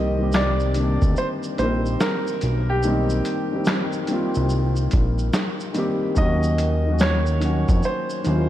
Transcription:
Already playing: C2 D#3 G3 A#3 C4 G4 D#5
0.17 D#3 G3 A#3
0.21 C4 G4
0.32 D5, snare, clap, shaker
0.60 shaker
0.74 D3 G3 A#3, closed hi-hat, shaker
0.79 D#3 C4 D4
1.02 D2, kick, shaker
1.16 C5, shaker
1.43 shaker
1.57 A#1 D#3 G3 A#3 C4 C5, closed hi-hat, shaker
1.63 A#4
1.86 shaker
2.00 A#4, snare, clap, shaker
2.27 shaker
2.41 B1, closed hi-hat, shaker
2.70 G4
2.83 D#3 G3, shaker
2.87 A#3 C4 D#4
3.10 shaker
3.25 closed hi-hat, shaker
3.52 D#3 G3 A#3
3.56 C4 D#4
3.65 snare, clap, shaker
3.92 shaker
4.06 D#3 G3 A#3, closed hi-hat, shaker
4.11 C4 F4
4.34 C2, shaker
4.49 shaker
4.76 shaker
4.91 A#1, kick, closed hi-hat, shaker
5.18 shaker
5.33 snare, clap, shaker
5.60 shaker
5.73 D#3 G3 A#3, closed hi-hat, shaker
5.77 C4 G4
6.15 D#2 D#3 F#3 A#3 D#5, kick, shaker
6.19 C#4 F#4
6.43 shaker
6.58 closed hi-hat, shaker
6.85 D#3 F#3 A#3
6.90 C#4 F#4
6.99 C#5, snare, clap, shaker
7.26 shaker
7.39 D#3 F#3 A#3, closed hi-hat, shaker
7.43 C#4 F#4
7.68 F2, kick, shaker
7.83 C5, shaker
8.10 shaker
8.23 D#2 D#3 F#3 A#3, closed hi-hat, shaker
8.27 C#4 E4
8.35 F4

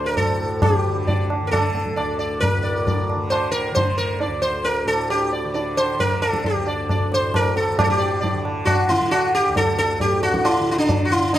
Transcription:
Already playing: D2 A2 D3
0.06 A#4
0.17 A4, tabla tin, tabla ge
0.28 A2
0.62 G4, tabla na, tabla ge
0.86 D3
1.07 D5, tabla tin, tabla ge
1.30 tabla na
1.42 D3
1.47 A#4
1.51 A4, tabla na, tabla ge
1.75 tabla te
1.86 tabla ge
1.96 D2 D5, tabla na
2.19 D5
2.40 A#4, tabla tin, tabla ge
2.58 A2
2.63 D5
2.87 D5, tabla tin, tabla ge
3.10 tabla na
3.15 D3
3.30 C5, tabla na
3.51 A#4
3.71 D3 C5
3.76 tabla tin, tabla ge
3.98 A#4
4.21 D5, tabla tin
4.27 D2
4.42 C5
4.64 A#4, tabla tin
4.85 A2 A4, tabla na
5.10 G4, tabla na
5.33 D5
5.44 D3
5.54 D5, tabla tin
5.77 C5, tabla na
5.98 D3 A#4, tabla tin, tabla ge
6.22 A4, tabla na
6.33 tabla ke
6.44 G4, tabla tin, tabla ge
6.54 D2
6.67 D5, tabla na
6.89 D5, tabla na, tabla ge
7.12 A2 C5, tabla te
7.34 A#4, tabla na, tabla ge
7.56 A4, tabla te
7.69 D3
7.78 A2 G4, tabla na, tabla ge
7.84 A4
7.90 G4
7.98 D5
8.21 D5, tabla tin, tabla ge
8.34 D3
8.45 tabla na
8.65 F#4, tabla na, tabla ge
8.89 D3 E4, tabla te
9.01 tabla ge
9.11 F#4, tabla na
9.35 G4
9.48 D2
9.56 A4, tabla tin, tabla ge
9.78 A4
10.00 A2 G4, tabla tin, tabla ge
10.23 F#4, tabla na
10.34 tabla ke
10.45 E4, tabla na
10.59 D3
10.71 E4
10.78 D4
10.89 tabla tin, tabla ge
11.05 F#4
11.12 E4
11.16 D3
11.33 D4, tabla tin

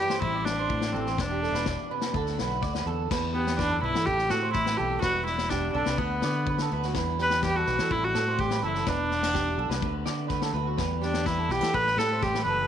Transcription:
Already playing: E3 G3 D4 G4
0.00 G2
0.10 C5, snare
0.21 A1 A2 E3 G3 E4, kick
0.26 C4
0.35 D5
0.45 C4 D4, snare
0.59 C5
0.69 A2 G4, kick
0.81 snare
0.87 D4
0.92 A1 E3 C4 A4
1.06 C5, snare
1.18 E1 E2 D4 G4, muted clean electric guitar stroke, kick, snare
1.32 G4
1.43 D4 A4, snare
1.52 E1 B4, snare
1.66 B2 D5, kick, snare
1.91 C3 B4
2.01 snare
2.14 D2 D3 F#4 A4, kick
2.26 snare
2.39 B1 F#4 B4, snare
2.62 D2 F#4 D5, kick, snare
2.75 B4, snare
2.86 E2 A4, muted steel-string acoustic guitar stroke
3.11 E2 D4 G4 B4, muted steel-string acoustic guitar stroke, kick, snare, crash
3.34 B3 D4 G4
3.47 snare
3.58 F#2 D4 B4, kick, snare
3.71 A4
3.81 B1 G2 E4 B4
3.94 E3 A4, snare
4.06 A1 A2 C4 G4, muted steel-string acoustic guitar stroke, kick
4.18 snare
4.30 A2 C4 F#4 A4, snare
4.42 C5
4.53 E3 G3 E4, kick, snare
4.66 B4, snare
4.77 B1 C4 G4 A4
4.90 A4
5.01 E1 G3 D4 F#4 B4, muted steel-string acoustic guitar stroke, kick, snare
5.26 D4 E4, snare
5.38 snare
5.49 B2 D4 G4, kick, snare
5.73 B1 C3 D4 A4
5.86 C2 B4, snare
5.97 D2 D3 B3 F#4, kick
6.22 D3 F#4 D5, snare
6.46 B3 B4, muted steel-string acoustic guitar stroke, kick
6.58 A4, snare
6.72 D2 F#4 B4
6.82 F#4, snare
6.94 E2 G3 D4 E4 B4, kick, snare
7.18 D4 G4 B4, snare
7.30 snare
7.42 E3 G3 G4 B4, kick, snare
7.56 F#4 A4
7.66 B1 D4 B4, snare
7.78 E3 A4, snare
7.90 A1 A2 G3 C4 E4, kick
8.04 F#4
8.14 A2 C4 A4, snare
8.28 C5
8.39 E3 G3 G4, kick
8.51 B4, snare
8.62 F#1 C4 E4 A4
8.75 A4, snare
8.86 E1 E2 G3 D4 G4 B4, kick, snare
9.11 B3, snare
9.23 D4, snare
9.34 B2 G4, kick, snare
9.58 B1 A4, muted steel-string acoustic guitar stroke
9.69 C2 B4, snare
9.82 D2 D3 B3 F#4, kick
10.06 D3 F#4 D5, snare
10.28 A3 B3 B4, kick, snare
10.42 A4, snare
10.53 D2 F#4 B4
10.67 F#4
10.77 E2 G3 D4 B4, kick, snare
10.82 G4
11.02 D4 G4, snare
11.14 snare
11.26 E3 G3 E4 B4, kick, snare
11.39 A4
11.49 B1 B3 G4 B4, snare
11.61 E3 D4 A4, snare
11.73 A1 A2 G3 C4 G4 B4, kick
11.87 snare
11.97 A2 C4 A4, snare
12.13 C5
12.22 E3 G3 G4, kick, snare
12.35 B4, snare
12.44 F#1 C4 B4
12.49 A4
12.60 A4

